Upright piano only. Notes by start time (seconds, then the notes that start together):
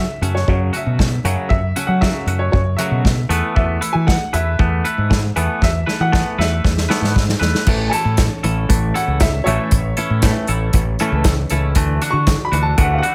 Already playing: E5
0.35 C#5
0.48 C#5
0.77 E5
1.49 E5
1.87 F#5
2.01 E5
2.39 C#5
2.52 C#5
2.77 E5
3.56 E5
3.93 G#5
4.07 F#5
4.34 E5
5.64 E5
6.01 F#5
6.39 E5
7.89 G#5
7.94 A5
8.95 F#5
9.21 E5
9.44 C#5 E5
12.10 C#6
12.45 B5
12.62 A5
12.81 F#5
12.94 F5
12.98 F#5